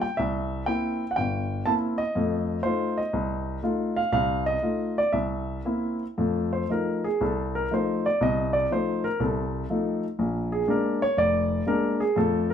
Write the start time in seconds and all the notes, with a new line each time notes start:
0.02 G5
0.17 C2 E5
0.66 A#3 C4 E4 G5
1.11 F#5
1.16 G1 G5
1.66 A#3 C4 E4 A5
1.98 D#5
2.15 F2 A3
2.63 A3 D#4 F4 C5
2.98 D#5
3.13 C2
3.63 A3 D#4 F4
3.96 F5
4.12 C2 C3 F5
4.46 D#5
4.62 A3 D#4 F4
4.98 D5
5.12 C2 E5
5.65 A#3 C4 E4
6.18 F2 A3
6.53 C5
6.69 F3 A3 D#4 A#4
7.04 G#4
7.21 C2 A4
7.55 A#4
7.71 F3 A3 D#4 C5
8.06 D5
8.21 C2 C3 D#5
8.53 D5
8.71 F3 A3 D#4 C5
9.04 A#4
9.20 C2 C3 A4
9.70 F3 A3 D#4
10.19 A#1
10.52 G#4
10.68 G#3 A#3 D4 A#4
11.02 C#5
11.17 F1 D5
11.67 G#3 A#3 D4 A#4
12.00 G#4
12.16 F2 A3 A4
12.50 A#4